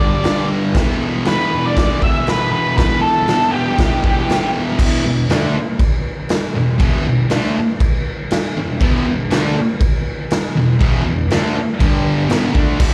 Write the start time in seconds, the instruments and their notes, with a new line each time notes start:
Already playing: distorted electric guitar G2, lead electric guitar D5
0.00 distorted electric guitar D3 G3
0.24 distorted electric guitar G2 D3 G3, snare, crash
0.75 distorted electric guitar E2 B2 E3, kick, snare, crash
1.25 distorted electric guitar E2 B2, lead electric guitar B4, snare, crash
1.29 distorted electric guitar E3
1.51 distorted electric guitar B2 E3
1.66 lead electric guitar D5
1.76 distorted electric guitar E2 B2 E3, kick, snare, crash
2.02 distorted electric guitar B2 E3, lead electric guitar E5, kick
2.27 distorted electric guitar E2 B2 E3, lead electric guitar B4, snare, crash
2.52 lead electric guitar B4
2.77 distorted electric guitar E2 B2 E3, lead electric guitar B4, kick, snare, crash
3.01 lead electric guitar A4
3.28 distorted electric guitar E2 B2 E3, snare, crash
3.51 distorted electric guitar E3, lead electric guitar G4
3.56 distorted electric guitar B2
3.78 distorted electric guitar E2 B2 E3, kick, snare, crash
4.04 distorted electric guitar B2 E3, kick
4.29 distorted electric guitar E2 B2 E3, snare, crash
4.79 distorted electric guitar E2 B2 E3, kick, crash
5.05 distorted electric guitar E2 B2
5.30 distorted electric guitar D3 A3 D4, snare, crash
5.79 kick, crash
6.29 snare, crash
6.55 distorted electric guitar E2 B2
6.79 distorted electric guitar E2 B2 E3, kick, crash
7.05 distorted electric guitar E2 B2
7.30 distorted electric guitar D3 A3 D4, snare, crash
7.80 kick, crash
8.31 snare, crash
8.57 distorted electric guitar E2 B2
8.80 distorted electric guitar E2 B2 E3, kick, crash
9.07 distorted electric guitar E2 B2
9.30 distorted electric guitar D3 A3 D4, snare, crash
9.81 kick, crash
10.30 snare, crash
10.56 distorted electric guitar E2 B2
10.79 distorted electric guitar E2 B2 E3, kick, crash
11.05 distorted electric guitar E2 B2
11.30 distorted electric guitar D3 A3 D4, snare, crash
11.79 distorted electric guitar G2 D3 G3, kick, crash
12.29 distorted electric guitar E2 B2 E3, snare, crash
12.53 distorted electric guitar D3 A3 D4, kick
12.77 distorted electric guitar E2 B2 E3, kick, crash